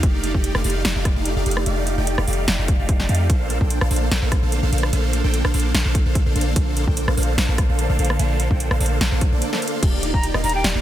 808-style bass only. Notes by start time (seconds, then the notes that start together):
0.03 F1
0.34 F1
0.55 F1
0.64 F1
0.85 F1
0.96 F1
1.16 F1
1.36 F1
1.46 F1
1.66 F1
1.98 F1
2.18 F1
2.28 F1
2.48 F1
2.59 F1
2.79 F1
3.00 F1
3.09 F2
3.30 A#1
3.61 A#1
3.81 A#1
3.91 A#1
4.11 A#1
4.22 A#1
4.43 A#1
4.63 A#1
4.72 A#1
4.93 A#1
5.24 A#1
5.45 A#1
5.54 A#1
5.74 A#1
5.85 A#1
6.06 A#1
6.26 A#1
6.36 A#1
6.56 A#1
6.87 A#1
7.08 A#1
7.17 A#1
7.38 A#1
7.48 A#1
7.69 A#1
7.89 A#1
7.99 A#1
8.19 A#1
8.51 A#1
8.71 A#1
8.80 A#1
9.01 A#1
9.12 A#1
9.32 A#1
9.83 D#1
10.14 D#1
10.34 D#1
10.44 D#1
10.64 D#1
10.75 D#1